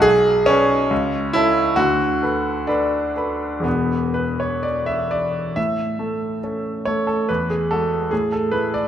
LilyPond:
\new Staff \with { instrumentName = "Grand piano" } { \time 2/4 \key a \major \tempo 4 = 70 << { b,,8 <b' d'' gis''>8 cis,8 <a' cis'' a''>8 | d,8 <a' b' b''>8 <a' b' b''>8 <a' b' b''>8 | <e,, e, gis' b' b''>2 | a,8 <a a'>8 <cis' a'>8 <a a'>8 |
e,8 <gis fis'>8 a,8 <a e'>8 | } \\ { gis'8 cis'4 e'8 | fis'4 d'4 | b8 b'16 cis''16 d''16 e''16 d''8 | e''4. cis''16 a'16 |
b'16 gis'16 a'8 gis'16 a'16 b'16 d''16 | } >> }